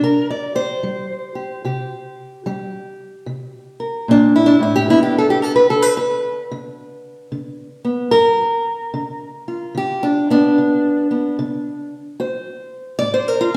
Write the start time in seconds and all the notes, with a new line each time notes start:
Already playing: G4
0.01 C3 A#4
0.30 D5
0.55 G4 C5
0.83 G3
1.35 G4
1.65 C3 G4
2.46 G3 G4
3.26 C3
3.80 A#4
4.08 A#2 D4
4.36 E4
4.46 D4
4.60 A2 E4
4.76 G4
4.88 G2 D3 B3 D4 E4
5.03 G4
5.18 A4
5.30 G4
5.42 A4
5.56 B4
5.70 D3 A4
5.82 B4
5.97 B4
6.51 D3
7.32 D3
7.85 B3
8.11 G2 A#4
8.94 D3
9.48 F4
9.75 D3 G4
10.03 D4
10.30 B3 D4
10.58 D3
11.11 B3
11.39 D3
12.20 F#4 C5
12.99 A2 D5
13.14 C5
13.28 A#4
13.41 F4